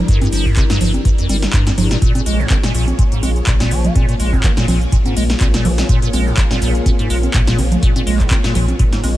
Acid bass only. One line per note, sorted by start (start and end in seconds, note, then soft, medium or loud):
0.08 0.19 G2 loud
0.22 0.28 G2 loud
0.33 0.47 F3 medium
0.46 0.55 F2 loud
0.57 0.64 C3 medium
0.70 0.79 G2 loud
0.81 0.92 G2 medium
1.05 1.10 G2 loud
1.19 1.28 F2 medium
1.30 1.37 G3 medium
1.54 1.64 G2 medium
1.67 1.70 G2 loud
1.78 1.89 G2 medium
1.91 1.97 A#2 medium
2.02 2.13 A#2 loud
2.15 2.21 A#2 loud
2.26 2.41 G#3 medium
2.39 2.48 G#2 loud
2.50 2.58 D#3 medium
2.63 2.73 A#2 loud
2.75 2.85 A#2 medium
2.99 3.03 A#2 loud
3.12 3.21 G#2 medium
3.23 3.30 G#3 medium
3.47 3.54 A#2 loud
3.60 3.73 A#2 loud
3.71 3.86 F3 loud
3.84 3.94 A#3 medium
3.95 4.06 A#2 loud
4.09 4.15 A#2 loud
4.20 4.34 G#3 medium
4.33 4.42 G#2 loud
4.44 4.51 D#3 medium
4.57 4.66 A#2 loud
4.68 4.79 A#2 medium
4.92 4.97 A#2 loud
5.06 5.15 G#2 medium
5.17 5.24 G#3 medium
5.41 5.48 A#2 loud
5.54 5.66 A#2 loud
5.65 5.80 F3 loud
5.78 5.87 A#3 medium
5.89 6.00 A#2 loud
6.02 6.08 A#2 loud
6.13 6.28 G#3 medium
6.27 6.36 G#2 loud
6.37 6.45 D#3 medium
6.51 6.60 A#2 loud
6.62 6.73 A#2 medium
6.86 6.90 A#2 loud
6.99 7.08 G#2 medium
7.10 7.17 G#3 medium
7.34 7.41 A#2 loud
7.47 7.60 A#2 loud
7.58 7.73 F3 loud
7.72 7.81 A#3 medium
7.83 7.93 A#2 loud
7.96 8.02 A#2 loud
8.07 8.21 G#3 medium
8.20 8.29 G#2 loud
8.31 8.38 D#3 medium
8.44 8.53 A#2 loud
8.55 8.66 A#2 medium
8.79 8.84 A#2 loud
8.93 9.02 G#2 medium
9.04 9.17 G#3 medium